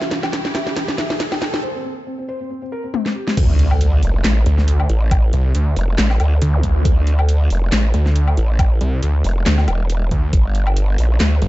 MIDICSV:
0, 0, Header, 1, 9, 480
1, 0, Start_track
1, 0, Key_signature, -1, "minor"
1, 0, Tempo, 434783
1, 1805, Time_signature, 4, 2, 24, 8
1, 12678, End_track
2, 0, Start_track
2, 0, Title_t, "Felt piano"
2, 0, Program_c, 0, 0
2, 16, Note_on_c, 0, 67, 65
2, 106, Note_off_c, 0, 67, 0
2, 124, Note_on_c, 0, 67, 66
2, 233, Note_off_c, 0, 67, 0
2, 364, Note_on_c, 0, 67, 66
2, 474, Note_off_c, 0, 67, 0
2, 496, Note_on_c, 0, 67, 65
2, 586, Note_off_c, 0, 67, 0
2, 603, Note_on_c, 0, 76, 95
2, 713, Note_off_c, 0, 76, 0
2, 736, Note_on_c, 0, 67, 66
2, 826, Note_off_c, 0, 67, 0
2, 844, Note_on_c, 0, 67, 65
2, 953, Note_off_c, 0, 67, 0
2, 975, Note_on_c, 0, 67, 64
2, 1065, Note_off_c, 0, 67, 0
2, 1083, Note_on_c, 0, 76, 93
2, 1193, Note_off_c, 0, 76, 0
2, 1216, Note_on_c, 0, 67, 64
2, 1306, Note_off_c, 0, 67, 0
2, 1324, Note_on_c, 0, 67, 67
2, 1433, Note_off_c, 0, 67, 0
2, 1455, Note_on_c, 0, 67, 66
2, 1545, Note_off_c, 0, 67, 0
2, 1563, Note_on_c, 0, 79, 91
2, 1673, Note_off_c, 0, 79, 0
2, 1696, Note_on_c, 0, 67, 65
2, 1786, Note_off_c, 0, 67, 0
2, 1803, Note_on_c, 0, 72, 101
2, 1913, Note_off_c, 0, 72, 0
2, 1935, Note_on_c, 0, 60, 67
2, 2025, Note_off_c, 0, 60, 0
2, 2043, Note_on_c, 0, 60, 65
2, 2153, Note_off_c, 0, 60, 0
2, 2284, Note_on_c, 0, 60, 66
2, 2394, Note_off_c, 0, 60, 0
2, 2415, Note_on_c, 0, 60, 63
2, 2505, Note_off_c, 0, 60, 0
2, 2523, Note_on_c, 0, 72, 99
2, 2633, Note_off_c, 0, 72, 0
2, 2655, Note_on_c, 0, 60, 66
2, 2746, Note_off_c, 0, 60, 0
2, 2764, Note_on_c, 0, 60, 64
2, 2873, Note_off_c, 0, 60, 0
2, 2896, Note_on_c, 0, 60, 64
2, 2986, Note_off_c, 0, 60, 0
2, 3004, Note_on_c, 0, 70, 94
2, 3114, Note_off_c, 0, 70, 0
2, 3135, Note_on_c, 0, 60, 66
2, 3226, Note_off_c, 0, 60, 0
2, 3244, Note_on_c, 0, 60, 64
2, 3353, Note_off_c, 0, 60, 0
2, 3376, Note_on_c, 0, 60, 67
2, 3466, Note_off_c, 0, 60, 0
2, 3484, Note_on_c, 0, 67, 90
2, 3593, Note_off_c, 0, 67, 0
2, 3614, Note_on_c, 0, 60, 63
2, 3705, Note_off_c, 0, 60, 0
2, 12678, End_track
3, 0, Start_track
3, 0, Title_t, "String section"
3, 0, Program_c, 1, 48
3, 0, Note_on_c, 1, 48, 84
3, 0, Note_on_c, 1, 52, 77
3, 0, Note_on_c, 1, 55, 76
3, 0, Note_on_c, 1, 64, 78
3, 0, Note_on_c, 1, 67, 92
3, 1760, Note_off_c, 1, 48, 0
3, 1761, Note_off_c, 1, 55, 0
3, 1786, Note_off_c, 1, 52, 0
3, 1786, Note_off_c, 1, 64, 0
3, 1786, Note_off_c, 1, 67, 0
3, 12678, End_track
4, 0, Start_track
4, 0, Title_t, "Detuned saw bass"
4, 0, Program_c, 2, 39
4, 4924, Note_on_c, 2, 38, 99
4, 5387, Note_off_c, 2, 38, 0
4, 5884, Note_on_c, 2, 36, 96
4, 6107, Note_off_c, 2, 36, 0
4, 6124, Note_on_c, 2, 38, 100
4, 6347, Note_off_c, 2, 38, 0
4, 7084, Note_on_c, 2, 38, 102
4, 7307, Note_off_c, 2, 38, 0
4, 7324, Note_on_c, 2, 38, 100
4, 7547, Note_off_c, 2, 38, 0
4, 8765, Note_on_c, 2, 38, 100
4, 9227, Note_off_c, 2, 38, 0
4, 9725, Note_on_c, 2, 36, 95
4, 9948, Note_off_c, 2, 36, 0
4, 9965, Note_on_c, 2, 38, 101
4, 10187, Note_off_c, 2, 38, 0
4, 10444, Note_on_c, 2, 38, 99
4, 10667, Note_off_c, 2, 38, 0
4, 11165, Note_on_c, 2, 38, 99
4, 11387, Note_off_c, 2, 38, 0
4, 12604, Note_on_c, 2, 31, 101
4, 12678, Note_off_c, 2, 31, 0
4, 12678, End_track
5, 0, Start_track
5, 0, Title_t, "Wobble bass"
5, 0, Program_c, 3, 39
5, 3724, Note_on_c, 3, 38, 97
5, 4427, Note_off_c, 3, 38, 0
5, 4444, Note_on_c, 3, 29, 102
5, 4667, Note_off_c, 3, 29, 0
5, 4684, Note_on_c, 3, 33, 94
5, 4907, Note_off_c, 3, 33, 0
5, 5404, Note_on_c, 3, 33, 99
5, 5867, Note_off_c, 3, 33, 0
5, 6364, Note_on_c, 3, 29, 103
5, 6587, Note_off_c, 3, 29, 0
5, 6604, Note_on_c, 3, 33, 98
5, 6827, Note_off_c, 3, 33, 0
5, 6844, Note_on_c, 3, 38, 97
5, 7067, Note_off_c, 3, 38, 0
5, 7564, Note_on_c, 3, 38, 98
5, 8267, Note_off_c, 3, 38, 0
5, 8284, Note_on_c, 3, 29, 103
5, 8507, Note_off_c, 3, 29, 0
5, 8524, Note_on_c, 3, 33, 99
5, 8747, Note_off_c, 3, 33, 0
5, 9245, Note_on_c, 3, 33, 102
5, 9707, Note_off_c, 3, 33, 0
5, 10205, Note_on_c, 3, 29, 102
5, 10427, Note_off_c, 3, 29, 0
5, 10685, Note_on_c, 3, 28, 100
5, 11147, Note_off_c, 3, 28, 0
5, 11405, Note_on_c, 3, 31, 99
5, 12107, Note_off_c, 3, 31, 0
5, 12125, Note_on_c, 3, 34, 99
5, 12347, Note_off_c, 3, 34, 0
5, 12364, Note_on_c, 3, 38, 98
5, 12587, Note_off_c, 3, 38, 0
5, 12678, End_track
6, 0, Start_track
6, 0, Title_t, "Impact"
6, 0, Program_c, 4, 103
6, 3724, Note_on_c, 4, 60, 81
6, 5645, Note_off_c, 4, 60, 0
6, 12678, End_track
7, 0, Start_track
7, 0, Title_t, "Riser"
7, 0, Program_c, 5, 103
7, 0, Note_on_c, 5, 60, 78
7, 1804, Note_off_c, 5, 60, 0
7, 12678, End_track
8, 0, Start_track
8, 0, Title_t, "Zap"
8, 0, Program_c, 6, 103
8, 7216, Note_on_c, 6, 60, 62
8, 7324, Note_off_c, 6, 60, 0
8, 12678, End_track
9, 0, Start_track
9, 0, Title_t, "Drums"
9, 17, Note_on_c, 9, 38, 80
9, 125, Note_off_c, 9, 38, 0
9, 125, Note_on_c, 9, 38, 95
9, 125, Note_on_c, 9, 42, 53
9, 235, Note_off_c, 9, 38, 0
9, 235, Note_off_c, 9, 42, 0
9, 257, Note_on_c, 9, 38, 83
9, 257, Note_on_c, 9, 77, 63
9, 365, Note_off_c, 9, 38, 0
9, 365, Note_on_c, 9, 38, 92
9, 365, Note_on_c, 9, 42, 78
9, 367, Note_off_c, 9, 77, 0
9, 475, Note_off_c, 9, 38, 0
9, 475, Note_off_c, 9, 42, 0
9, 496, Note_on_c, 9, 38, 81
9, 604, Note_off_c, 9, 38, 0
9, 604, Note_on_c, 9, 38, 94
9, 604, Note_on_c, 9, 46, 95
9, 715, Note_off_c, 9, 38, 0
9, 715, Note_off_c, 9, 46, 0
9, 736, Note_on_c, 9, 38, 83
9, 844, Note_off_c, 9, 38, 0
9, 844, Note_on_c, 9, 38, 100
9, 844, Note_on_c, 9, 42, 84
9, 955, Note_off_c, 9, 38, 0
9, 955, Note_off_c, 9, 42, 0
9, 976, Note_on_c, 9, 38, 89
9, 1084, Note_off_c, 9, 38, 0
9, 1084, Note_on_c, 9, 38, 102
9, 1084, Note_on_c, 9, 42, 55
9, 1195, Note_off_c, 9, 38, 0
9, 1195, Note_off_c, 9, 42, 0
9, 1216, Note_on_c, 9, 38, 90
9, 1324, Note_off_c, 9, 38, 0
9, 1324, Note_on_c, 9, 38, 100
9, 1324, Note_on_c, 9, 42, 84
9, 1435, Note_off_c, 9, 38, 0
9, 1435, Note_off_c, 9, 42, 0
9, 1456, Note_on_c, 9, 38, 87
9, 1456, Note_on_c, 9, 77, 54
9, 1564, Note_off_c, 9, 38, 0
9, 1564, Note_on_c, 9, 38, 100
9, 1564, Note_on_c, 9, 42, 56
9, 1566, Note_off_c, 9, 77, 0
9, 1675, Note_off_c, 9, 38, 0
9, 1675, Note_off_c, 9, 42, 0
9, 1696, Note_on_c, 9, 38, 89
9, 1807, Note_off_c, 9, 38, 0
9, 3244, Note_on_c, 9, 48, 64
9, 3355, Note_off_c, 9, 48, 0
9, 3376, Note_on_c, 9, 38, 65
9, 3486, Note_off_c, 9, 38, 0
9, 3616, Note_on_c, 9, 38, 84
9, 3724, Note_on_c, 9, 36, 127
9, 3725, Note_on_c, 9, 42, 86
9, 3725, Note_on_c, 9, 49, 104
9, 3726, Note_off_c, 9, 38, 0
9, 3835, Note_off_c, 9, 36, 0
9, 3835, Note_off_c, 9, 42, 0
9, 3835, Note_off_c, 9, 49, 0
9, 3964, Note_on_c, 9, 42, 58
9, 4075, Note_off_c, 9, 42, 0
9, 4097, Note_on_c, 9, 77, 59
9, 4205, Note_on_c, 9, 42, 80
9, 4207, Note_off_c, 9, 77, 0
9, 4315, Note_off_c, 9, 42, 0
9, 4445, Note_on_c, 9, 46, 92
9, 4555, Note_off_c, 9, 46, 0
9, 4685, Note_on_c, 9, 38, 121
9, 4685, Note_on_c, 9, 39, 95
9, 4685, Note_on_c, 9, 42, 83
9, 4795, Note_off_c, 9, 38, 0
9, 4795, Note_off_c, 9, 39, 0
9, 4795, Note_off_c, 9, 42, 0
9, 4924, Note_on_c, 9, 42, 59
9, 5035, Note_off_c, 9, 42, 0
9, 5056, Note_on_c, 9, 38, 39
9, 5164, Note_on_c, 9, 42, 86
9, 5166, Note_off_c, 9, 38, 0
9, 5275, Note_off_c, 9, 42, 0
9, 5296, Note_on_c, 9, 77, 52
9, 5404, Note_on_c, 9, 42, 55
9, 5406, Note_off_c, 9, 77, 0
9, 5514, Note_off_c, 9, 42, 0
9, 5644, Note_on_c, 9, 36, 127
9, 5644, Note_on_c, 9, 42, 80
9, 5644, Note_on_c, 9, 77, 61
9, 5755, Note_off_c, 9, 36, 0
9, 5755, Note_off_c, 9, 42, 0
9, 5755, Note_off_c, 9, 77, 0
9, 5884, Note_on_c, 9, 42, 55
9, 5995, Note_off_c, 9, 42, 0
9, 6124, Note_on_c, 9, 42, 79
9, 6234, Note_off_c, 9, 42, 0
9, 6364, Note_on_c, 9, 46, 89
9, 6475, Note_off_c, 9, 46, 0
9, 6604, Note_on_c, 9, 38, 125
9, 6604, Note_on_c, 9, 39, 95
9, 6604, Note_on_c, 9, 42, 81
9, 6714, Note_off_c, 9, 38, 0
9, 6714, Note_off_c, 9, 39, 0
9, 6714, Note_off_c, 9, 42, 0
9, 6736, Note_on_c, 9, 38, 40
9, 6736, Note_on_c, 9, 77, 52
9, 6844, Note_off_c, 9, 77, 0
9, 6844, Note_on_c, 9, 42, 54
9, 6844, Note_on_c, 9, 77, 54
9, 6846, Note_off_c, 9, 38, 0
9, 6954, Note_off_c, 9, 42, 0
9, 6954, Note_off_c, 9, 77, 0
9, 7084, Note_on_c, 9, 42, 83
9, 7194, Note_off_c, 9, 42, 0
9, 7324, Note_on_c, 9, 36, 66
9, 7324, Note_on_c, 9, 42, 57
9, 7435, Note_off_c, 9, 36, 0
9, 7435, Note_off_c, 9, 42, 0
9, 7564, Note_on_c, 9, 36, 127
9, 7564, Note_on_c, 9, 42, 79
9, 7675, Note_off_c, 9, 36, 0
9, 7675, Note_off_c, 9, 42, 0
9, 7804, Note_on_c, 9, 42, 53
9, 7914, Note_off_c, 9, 42, 0
9, 7936, Note_on_c, 9, 77, 60
9, 8044, Note_on_c, 9, 42, 78
9, 8046, Note_off_c, 9, 77, 0
9, 8154, Note_off_c, 9, 42, 0
9, 8284, Note_on_c, 9, 46, 88
9, 8394, Note_off_c, 9, 46, 0
9, 8524, Note_on_c, 9, 38, 127
9, 8524, Note_on_c, 9, 39, 93
9, 8524, Note_on_c, 9, 42, 81
9, 8634, Note_off_c, 9, 38, 0
9, 8634, Note_off_c, 9, 39, 0
9, 8634, Note_off_c, 9, 42, 0
9, 8764, Note_on_c, 9, 42, 54
9, 8875, Note_off_c, 9, 42, 0
9, 8896, Note_on_c, 9, 38, 42
9, 9004, Note_on_c, 9, 42, 81
9, 9006, Note_off_c, 9, 38, 0
9, 9115, Note_off_c, 9, 42, 0
9, 9136, Note_on_c, 9, 77, 53
9, 9245, Note_on_c, 9, 42, 53
9, 9247, Note_off_c, 9, 77, 0
9, 9355, Note_off_c, 9, 42, 0
9, 9484, Note_on_c, 9, 42, 79
9, 9484, Note_on_c, 9, 77, 63
9, 9485, Note_on_c, 9, 36, 127
9, 9595, Note_off_c, 9, 36, 0
9, 9595, Note_off_c, 9, 42, 0
9, 9595, Note_off_c, 9, 77, 0
9, 9725, Note_on_c, 9, 42, 53
9, 9835, Note_off_c, 9, 42, 0
9, 9964, Note_on_c, 9, 42, 75
9, 10075, Note_off_c, 9, 42, 0
9, 10205, Note_on_c, 9, 46, 90
9, 10315, Note_off_c, 9, 46, 0
9, 10445, Note_on_c, 9, 38, 123
9, 10445, Note_on_c, 9, 39, 89
9, 10445, Note_on_c, 9, 42, 78
9, 10555, Note_off_c, 9, 38, 0
9, 10555, Note_off_c, 9, 39, 0
9, 10555, Note_off_c, 9, 42, 0
9, 10577, Note_on_c, 9, 38, 41
9, 10577, Note_on_c, 9, 77, 57
9, 10685, Note_off_c, 9, 77, 0
9, 10685, Note_on_c, 9, 42, 51
9, 10685, Note_on_c, 9, 77, 57
9, 10687, Note_off_c, 9, 38, 0
9, 10796, Note_off_c, 9, 42, 0
9, 10796, Note_off_c, 9, 77, 0
9, 10925, Note_on_c, 9, 42, 79
9, 11036, Note_off_c, 9, 42, 0
9, 11165, Note_on_c, 9, 36, 68
9, 11165, Note_on_c, 9, 42, 52
9, 11275, Note_off_c, 9, 36, 0
9, 11276, Note_off_c, 9, 42, 0
9, 11405, Note_on_c, 9, 36, 123
9, 11405, Note_on_c, 9, 42, 79
9, 11515, Note_off_c, 9, 36, 0
9, 11515, Note_off_c, 9, 42, 0
9, 11645, Note_on_c, 9, 42, 51
9, 11755, Note_off_c, 9, 42, 0
9, 11777, Note_on_c, 9, 77, 66
9, 11885, Note_on_c, 9, 42, 77
9, 11887, Note_off_c, 9, 77, 0
9, 11996, Note_off_c, 9, 42, 0
9, 12125, Note_on_c, 9, 46, 94
9, 12236, Note_off_c, 9, 46, 0
9, 12365, Note_on_c, 9, 38, 120
9, 12365, Note_on_c, 9, 39, 88
9, 12365, Note_on_c, 9, 42, 78
9, 12476, Note_off_c, 9, 38, 0
9, 12476, Note_off_c, 9, 39, 0
9, 12476, Note_off_c, 9, 42, 0
9, 12605, Note_on_c, 9, 42, 51
9, 12678, Note_off_c, 9, 42, 0
9, 12678, End_track
0, 0, End_of_file